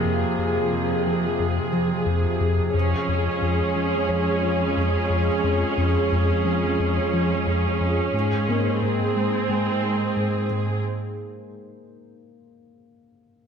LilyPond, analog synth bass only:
\new Staff \with { instrumentName = "Analog synth bass" } { \clef bass \time 4/4 \key des \major \tempo 4 = 89 f,8 f,8 f,8 f8 f,8 f8 f,8 f,8 | f,8 f,8 f,8 f8 f,8 f8 f,8 f,8 | f,8 f,8 f,8 f8 f,8 f8 f,8 f,8 | aes,8 aes,8 aes,8 aes8 aes,8 aes8 aes,8 aes,8 |
r1 | }